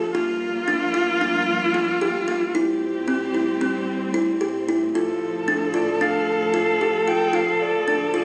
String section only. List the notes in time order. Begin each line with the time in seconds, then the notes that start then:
Already playing: D2 A2 F3
0.14 G2 F3 A#3
2.54 A2 G3 C4
4.93 D2 F3